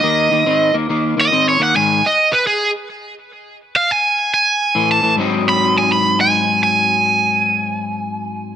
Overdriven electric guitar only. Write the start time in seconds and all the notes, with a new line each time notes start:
Already playing: D#5
1.21 D#5
1.49 C#5
1.63 F#5
1.76 G#5
2.06 D#5
2.33 B4
2.47 G#4
3.76 F5
3.91 G#5
4.34 G#5
4.92 A5
5.49 B5
5.78 G#5
5.92 B5
6.21 G#5
6.63 G#5